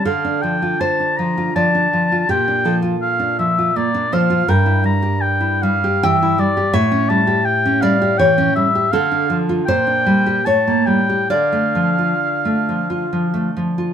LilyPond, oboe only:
\new Staff \with { instrumentName = "Oboe" } { \time 3/4 \key d \minor \tempo 4 = 80 f''8 g''8 a''8 bes''8 a''4 | g''8 r8 f''8 e''8 d''8 f''8 | g''8 bes''8 g''8 f''8 e''8 d''8 | cis''8 a''8 g''8 f''8 g''8 e''8 |
f''8 r8 g''4 a''8 g''8 | f''2~ f''8 r8 | }